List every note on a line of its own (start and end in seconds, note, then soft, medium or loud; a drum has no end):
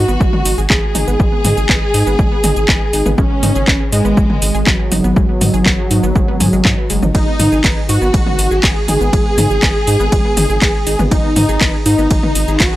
0.00 0.60 F#4 loud
0.08 0.17 G#1 medium
0.08 0.16 B3 loud
0.08 0.16 B4 medium
0.08 shaker soft
0.21 0.29 G#1 loud
0.21 0.32 G#3 loud
0.21 0.32 G#4 medium
0.21 kick loud
0.21 shaker soft
0.33 0.45 B3 medium
0.33 0.45 B4 medium
0.33 mid tom medium
0.45 0.54 G#1 medium
0.45 0.50 D#4 medium
0.45 0.50 D#5 medium
0.45 open hi-hat loud
0.45 shaker medium
0.58 0.67 G#1 medium
0.58 0.63 G#4 loud
0.58 0.63 G#5 medium
0.58 shaker soft
0.70 0.79 G#1 loud
0.70 3.08 G#4 loud
0.70 0.78 B4 medium
0.70 0.78 B5 medium
0.70 kick loud
0.70 clap loud
0.70 shaker soft
0.83 0.90 G#4 medium
0.83 0.90 G#5 medium
0.95 1.04 G#1 medium
0.95 1.07 D#4 loud
0.95 1.07 D#5 medium
0.95 open hi-hat medium
0.95 mid tom medium
0.95 shaker medium
1.08 1.16 G#1 medium
1.08 1.15 B3 medium
1.08 1.15 B4 medium
1.08 shaker soft
1.20 1.29 G#1 loud
1.20 1.32 G#3 loud
1.20 1.32 G#4 medium
1.20 kick loud
1.20 shaker soft
1.32 1.44 B3 medium
1.32 1.44 B4 medium
1.44 1.53 G#2 medium
1.44 1.56 D#4 loud
1.44 1.56 D#5 medium
1.44 open hi-hat loud
1.44 mid tom medium
1.44 shaker medium
1.57 1.66 G#1 medium
1.57 1.62 G#4 loud
1.57 1.62 G#5 medium
1.57 shaker soft
1.69 1.78 G#1 loud
1.69 1.74 B4 medium
1.69 1.74 B5 medium
1.69 kick loud
1.69 clap loud
1.69 shaker soft
1.82 1.93 G#4 medium
1.82 1.93 G#5 medium
1.94 2.03 G#2 loud
1.94 2.06 D#4 loud
1.94 2.06 D#5 medium
1.94 open hi-hat loud
1.94 shaker medium
2.07 2.15 G#1 medium
2.07 2.14 B3 loud
2.07 2.14 B4 medium
2.07 shaker soft
2.19 2.28 G#1 loud
2.19 2.31 G#3 loud
2.19 2.31 G#4 medium
2.19 kick loud
2.19 shaker soft
2.32 2.36 B3 loud
2.32 2.36 B4 medium
2.44 2.53 G#1 loud
2.44 2.56 D#4 loud
2.44 2.56 D#5 medium
2.44 open hi-hat loud
2.44 mid tom medium
2.44 shaker medium
2.56 2.65 G#1 medium
2.56 2.61 G#4 medium
2.56 2.61 G#5 medium
2.56 shaker soft
2.68 2.77 G#1 loud
2.68 2.76 B4 medium
2.68 2.76 B5 medium
2.68 kick loud
2.68 clap loud
2.68 shaker soft
2.81 2.93 G#4 medium
2.81 2.93 G#5 medium
2.93 3.02 G#1 medium
2.93 3.05 D#4 loud
2.93 3.05 D#5 medium
2.93 open hi-hat medium
2.93 shaker medium
3.06 3.15 G#1 medium
3.06 3.13 B3 loud
3.06 3.13 B4 medium
3.06 mid tom medium
3.06 shaker soft
3.18 3.27 G#1 loud
3.18 3.30 G#3 loud
3.18 3.83 C#4 loud
3.18 3.30 G#4 medium
3.18 kick loud
3.18 shaker soft
3.31 3.38 B3 medium
3.31 3.38 B4 medium
3.43 3.52 G#2 medium
3.43 3.51 D#4 loud
3.43 3.51 D#5 medium
3.43 open hi-hat loud
3.43 mid tom medium
3.43 shaker medium
3.55 3.64 G#1 medium
3.55 3.60 G#4 loud
3.55 3.60 G#5 medium
3.55 shaker soft
3.68 3.77 G#1 loud
3.68 3.80 B4 loud
3.68 3.79 B5 medium
3.68 kick loud
3.68 clap loud
3.68 shaker soft
3.80 3.92 G#4 medium
3.80 3.92 G#5 medium
3.92 4.01 G#2 loud
3.92 4.67 G#3 loud
3.92 4.68 G#3 medium
3.92 4.04 D#4 loud
3.92 4.04 D#5 medium
3.92 open hi-hat medium
3.92 shaker medium
4.05 4.14 G#1 medium
4.05 4.13 B3 loud
4.05 4.13 B4 medium
4.05 shaker soft
4.17 4.26 G#1 loud
4.17 4.29 G#3 loud
4.17 4.29 G#4 medium
4.17 kick loud
4.17 shaker soft
4.30 4.41 B3 medium
4.30 4.41 B4 medium
4.30 mid tom medium
4.42 4.51 G#1 loud
4.42 4.47 D#4 medium
4.42 4.47 D#5 medium
4.42 open hi-hat loud
4.42 shaker medium
4.55 4.63 G#1 medium
4.55 4.59 G#4 loud
4.55 4.59 G#5 medium
4.55 shaker soft
4.67 4.76 G#1 loud
4.67 7.05 F#3 loud
4.67 4.75 B4 medium
4.67 4.75 B5 medium
4.67 kick loud
4.67 clap loud
4.67 shaker soft
4.79 4.87 G#4 medium
4.79 4.87 G#5 medium
4.92 5.01 G#1 medium
4.92 5.03 D#4 loud
4.92 5.03 D#5 medium
4.92 open hi-hat medium
4.92 mid tom medium
4.92 shaker medium
5.04 5.13 G#1 medium
5.04 5.12 B3 loud
5.04 5.12 B4 medium
5.04 shaker soft
5.16 5.25 G#1 loud
5.16 5.28 G#3 loud
5.16 5.28 G#4 medium
5.16 kick loud
5.16 shaker soft
5.29 5.40 B3 medium
5.29 5.40 B4 medium
5.41 5.50 G#2 medium
5.41 5.53 D#4 loud
5.41 5.53 D#5 medium
5.41 open hi-hat loud
5.41 mid tom medium
5.41 shaker medium
5.54 5.62 G#1 medium
5.54 5.58 G#4 loud
5.54 5.58 G#5 medium
5.54 shaker soft
5.66 5.75 G#1 loud
5.66 5.71 B4 medium
5.66 5.71 B5 medium
5.66 kick loud
5.66 clap loud
5.66 shaker soft
5.79 5.90 G#4 medium
5.79 5.90 G#5 medium
5.91 6.00 G#2 loud
5.91 6.03 D#4 loud
5.91 6.03 D#5 medium
5.91 open hi-hat loud
5.91 shaker medium
6.03 6.12 G#1 medium
6.03 6.11 B3 loud
6.03 6.11 B4 medium
6.03 shaker soft
6.16 6.42 G#1 loud
6.16 6.27 G#3 loud
6.16 6.27 G#4 medium
6.16 kick loud
6.16 shaker soft
6.28 6.33 B3 loud
6.28 6.33 B4 medium
6.40 6.49 G#2 loud
6.40 6.45 G#4 loud
6.40 6.45 G#5 medium
6.40 open hi-hat loud
6.40 mid tom loud
6.40 shaker medium
6.53 6.62 G#1 medium
6.53 6.61 G#3 loud
6.53 6.61 G#4 medium
6.53 shaker soft
6.65 6.74 G#2 loud
6.65 6.77 D#5 medium
6.65 6.77 D#6 medium
6.65 kick loud
6.65 clap loud
6.65 shaker soft
6.78 6.85 B4 medium
6.78 6.85 B5 medium
6.90 6.99 F#1 medium
6.90 6.95 G#3 loud
6.90 6.95 G#4 medium
6.90 open hi-hat medium
6.90 shaker medium
7.02 7.11 G#1 medium
7.02 7.10 D#4 medium
7.02 7.10 D#5 medium
7.02 mid tom medium
7.02 shaker soft
7.15 7.24 G#1 loud
7.15 7.27 G#3 loud
7.15 7.79 D#4 loud
7.15 7.27 G#4 medium
7.15 kick loud
7.15 ride medium
7.15 shaker soft
7.27 7.35 B3 medium
7.27 7.35 B4 medium
7.39 7.48 G#2 medium
7.39 7.48 D#4 loud
7.39 7.48 D#5 medium
7.39 open hi-hat loud
7.39 mid tom loud
7.39 shaker medium
7.52 7.61 G#1 medium
7.52 7.57 G#4 loud
7.52 7.57 G#5 medium
7.52 shaker soft
7.64 7.73 G#1 loud
7.64 7.76 B4 loud
7.64 7.76 B5 medium
7.64 kick loud
7.64 clap loud
7.64 ride medium
7.64 shaker soft
7.77 7.88 G#4 medium
7.77 7.88 G#5 medium
7.89 7.98 G#2 loud
7.89 8.01 D#4 loud
7.89 8.63 F#4 loud
7.89 8.65 F#4 loud
7.89 8.01 D#5 medium
7.89 open hi-hat loud
7.89 shaker medium
8.02 8.10 G#1 medium
8.02 8.09 B3 loud
8.02 8.09 B4 medium
8.02 shaker soft
8.14 8.23 G#1 loud
8.14 8.26 G#3 loud
8.14 8.26 G#4 medium
8.14 kick loud
8.14 ride medium
8.14 shaker soft
8.26 8.38 B3 medium
8.26 8.38 B4 medium
8.26 mid tom medium
8.39 8.48 G#1 medium
8.39 8.43 D#4 medium
8.39 8.43 D#5 medium
8.39 open hi-hat loud
8.39 shaker medium
8.51 8.60 G#1 medium
8.51 8.56 G#4 loud
8.51 8.56 G#5 medium
8.51 shaker soft
8.63 8.72 G#1 loud
8.63 11.02 G#4 loud
8.63 8.71 B4 medium
8.63 8.71 B5 medium
8.63 kick loud
8.63 clap loud
8.63 ride medium
8.63 shaker soft
8.76 8.84 G#4 medium
8.76 8.84 G#5 medium
8.88 8.97 G#1 medium
8.88 9.00 D#4 loud
8.88 9.00 D#5 medium
8.88 open hi-hat medium
8.88 mid tom medium
8.88 shaker medium
9.01 9.09 G#1 medium
9.01 9.09 B3 loud
9.01 9.09 B4 medium
9.01 shaker soft
9.13 9.22 G#1 loud
9.13 9.25 G#3 loud
9.13 9.25 G#4 medium
9.13 kick loud
9.13 ride medium
9.13 shaker soft
9.26 9.37 B3 medium
9.26 9.37 B4 medium
9.38 9.47 G#2 medium
9.38 9.50 D#4 loud
9.38 9.50 D#5 medium
9.38 open hi-hat loud
9.38 mid tom loud
9.38 shaker medium
9.50 9.59 G#1 medium
9.50 9.55 G#4 loud
9.50 9.55 G#5 medium
9.50 shaker soft
9.63 9.72 G#1 loud
9.63 9.67 B4 medium
9.63 9.67 B5 medium
9.63 kick loud
9.63 clap loud
9.63 ride medium
9.63 shaker soft
9.75 9.87 G#4 medium
9.75 9.87 G#5 medium
9.87 9.96 G#2 loud
9.87 9.99 D#4 loud
9.87 9.99 D#5 medium
9.87 open hi-hat medium
9.87 shaker medium
10.00 10.09 G#1 medium
10.00 10.08 B3 loud
10.00 10.08 B4 medium
10.00 shaker soft
10.12 10.21 G#1 loud
10.12 10.24 G#3 medium
10.12 10.24 G#4 medium
10.12 kick loud
10.12 ride medium
10.12 shaker soft
10.25 10.29 B3 loud
10.25 10.29 B4 medium
10.37 10.46 G#1 loud
10.37 10.49 D#4 loud
10.37 10.49 D#5 medium
10.37 open hi-hat loud
10.37 mid tom loud
10.37 shaker medium
10.50 10.58 G#1 medium
10.50 10.54 G#4 loud
10.50 10.54 G#5 medium
10.50 shaker soft
10.62 10.71 G#1 loud
10.62 10.70 B4 medium
10.62 10.70 B5 medium
10.62 kick loud
10.62 clap loud
10.62 ride medium
10.62 shaker soft
10.74 10.86 G#4 medium
10.74 10.86 G#5 medium
10.87 10.96 G#1 medium
10.87 10.99 D#4 loud
10.87 10.99 D#5 medium
10.87 open hi-hat medium
10.87 shaker medium
10.99 11.08 G#1 medium
10.99 11.07 B3 loud
10.99 11.07 B4 medium
10.99 mid tom medium
10.99 shaker soft
11.11 11.20 G#1 loud
11.11 11.23 G#3 loud
11.11 11.76 D#4 loud
11.11 11.23 G#4 medium
11.11 kick loud
11.11 ride medium
11.11 shaker soft
11.24 11.32 B3 medium
11.24 11.32 B4 medium
11.36 11.45 G#2 medium
11.36 11.44 D#4 loud
11.36 11.44 D#5 medium
11.36 open hi-hat loud
11.36 mid tom loud
11.36 shaker medium
11.49 11.57 G#1 medium
11.49 11.53 G#4 loud
11.49 11.53 G#5 medium
11.49 shaker soft
11.61 11.70 G#1 loud
11.61 11.73 B4 loud
11.61 11.73 B5 medium
11.61 kick loud
11.61 clap loud
11.61 ride medium
11.61 shaker soft
11.74 11.85 G#4 medium
11.74 11.85 G#5 medium
11.86 11.95 G#2 loud
11.86 12.60 D#4 loud
11.86 12.62 D#4 loud
11.86 11.98 D#4 loud
11.86 11.98 D#5 medium
11.86 open hi-hat medium
11.86 shaker medium
11.98 12.07 G#1 medium
11.98 12.06 B3 loud
11.98 12.06 B4 medium
11.98 shaker soft
12.11 12.20 G#1 loud
12.11 12.22 G#3 loud
12.11 12.22 G#4 medium
12.11 kick loud
12.11 ride medium
12.11 shaker soft
12.23 12.35 B3 medium
12.23 12.35 B4 medium
12.23 mid tom medium
12.35 12.44 G#1 loud
12.35 12.40 D#4 medium
12.35 12.40 D#5 medium
12.35 open hi-hat loud
12.35 shaker medium
12.48 12.57 G#1 medium
12.48 12.53 G#4 loud
12.48 12.53 G#5 medium
12.48 shaker soft
12.60 12.69 G#1 loud
12.60 12.76 F#4 loud
12.60 12.68 B4 medium
12.60 12.68 B5 medium
12.60 kick loud
12.60 clap loud
12.60 ride medium
12.60 shaker soft
12.73 12.76 G#4 medium
12.73 12.76 G#5 medium